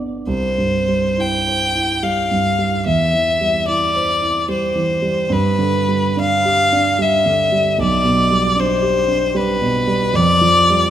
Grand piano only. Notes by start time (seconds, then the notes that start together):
Already playing: B3 D4 D5
0.27 C2
0.58 G2
0.88 G3
1.18 E4
1.48 C5
1.75 E4
2.03 G3
2.31 G2
2.58 G3
2.86 E2
3.13 E3
3.41 G3
3.68 E4
3.95 C5
4.22 E4
4.49 G3
4.75 E3
5.02 G3
5.30 G2
5.59 D3
5.88 G3
6.17 D4
6.45 G4
6.72 D4
6.99 G3
7.26 D3
7.52 G3
7.78 B1
8.04 B2
8.31 G3
8.56 D4
8.82 G4
9.08 D4
9.35 G3
9.61 B2
9.87 G3
10.14 F2
10.41 F3
10.70 G3